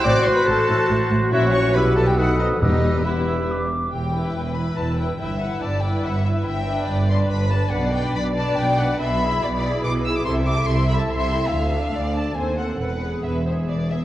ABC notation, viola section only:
X:1
M:3/4
L:1/8
Q:1/4=141
K:Em
V:1 name="Viola section"
F2 A2 F2- | F6 | G4- G z | z [EB]2 [EB]2 [EB] |
[EB] [EB]2 [EB]2 [EB] | z [DB]2 [DB]2 [DB] | [DB] [DB]2 [DB]2 [DB] | [K:Ephr] z [E^G]2 [EG]2 [EG] |
[EA] [EA]2 [EA]2 [EA] | z [DA]2 [DA] [^B,A] [B,A] | z [B,^G]2 [B,G]2 [B,G] |]